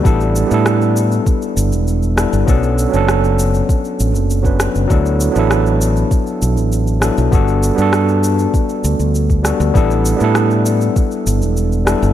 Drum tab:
SH |xxxxxxxxxxxxxxxx|xxxxxxxxxxxxxxxx|xxxxxxxxxxxxxxxx|xxxxxxxxxxxxxxxx|
SD |----r---------r-|----r---------r-|----r---------r-|----r---------r-|
BD |o-------o-------|o-------o----o--|o-------o-------|o-------o----o--|

SH |xxxxxxxxxxxxxxxx|
SD |----r---------r-|
BD |o-------o-------|